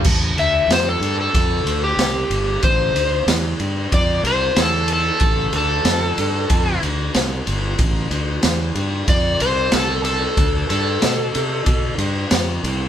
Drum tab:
CC |x-------|--------|--------|--------|
RD |-xxxxxxx|xxxxxxxx|xxxxxxxx|xxxxxxxx|
SD |--o---o-|--o---o-|--o---o-|--o---o-|
BD |o---o---|o---o---|o---o---|o---o---|

CC |--------|
RD |xxxxxxxx|
SD |--o---o-|
BD |o---o---|